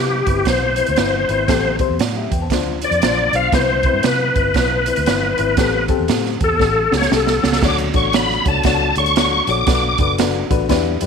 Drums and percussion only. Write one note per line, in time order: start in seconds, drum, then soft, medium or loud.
0.27 kick medium
0.27 closed hi-hat medium
0.45 kick medium
0.45 snare medium
0.45 closed hi-hat medium
0.76 closed hi-hat medium
0.86 closed hi-hat medium
0.96 snare loud
0.96 closed hi-hat medium
1.29 closed hi-hat medium
1.48 kick loud
1.48 snare loud
1.48 closed hi-hat loud
1.79 kick medium
1.79 closed hi-hat medium
1.99 snare loud
1.99 closed hi-hat medium
2.32 kick loud
2.32 closed hi-hat medium
2.50 kick medium
2.50 snare medium
2.50 closed hi-hat medium
2.82 closed hi-hat medium
2.92 closed hi-hat soft
3.02 snare loud
3.02 closed hi-hat medium
3.33 closed hi-hat medium
3.52 kick loud
3.52 snare loud
3.52 closed hi-hat loud
3.83 kick loud
3.83 closed hi-hat medium
4.03 snare loud
4.03 closed hi-hat medium
4.36 kick loud
4.36 closed hi-hat medium
4.54 kick medium
4.54 snare medium
4.54 closed hi-hat medium
4.86 closed hi-hat medium
4.96 closed hi-hat medium
5.06 snare loud
5.06 closed hi-hat medium
5.38 closed hi-hat medium
5.57 kick loud
5.57 snare loud
5.57 closed hi-hat loud
5.88 kick loud
5.88 closed hi-hat medium
6.08 snare loud
6.08 closed hi-hat medium
6.25 snare soft
6.40 kick medium
6.40 closed hi-hat medium
6.59 kick medium
6.59 snare medium
6.92 snare medium
7.02 snare medium
7.12 snare medium
7.27 snare medium
7.44 snare loud
7.53 snare medium
7.62 kick loud
7.62 snare loud
7.62 crash loud
7.78 closed hi-hat medium
7.94 kick loud
7.94 closed hi-hat medium
8.13 snare loud
8.13 closed hi-hat medium
8.30 snare soft
8.45 kick medium
8.45 closed hi-hat medium
8.63 kick medium
8.63 snare medium
8.63 closed hi-hat medium
8.95 closed hi-hat medium
9.06 closed hi-hat medium
9.16 snare loud
9.16 closed hi-hat medium
9.47 closed hi-hat medium
9.67 kick loud
9.67 snare loud
9.67 closed hi-hat loud
9.98 kick loud
9.98 closed hi-hat medium
10.18 snare loud
10.18 closed hi-hat medium
10.51 kick medium
10.51 closed hi-hat medium
10.69 kick medium
10.69 snare medium
10.69 closed hi-hat medium
11.01 closed hi-hat medium